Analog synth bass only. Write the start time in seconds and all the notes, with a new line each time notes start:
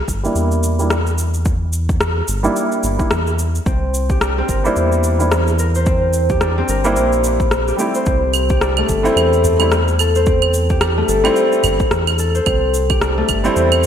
0.08 G1
0.35 E2
2.28 G1
2.84 G1
3.11 E2
3.66 C2
4.49 G1
4.76 E2
6.69 G1
6.96 A#1
8.07 C2
8.89 G1
9.16 E2
11.08 G1
11.63 G1
11.91 E2
12.47 C2
13.29 G1
13.56 E2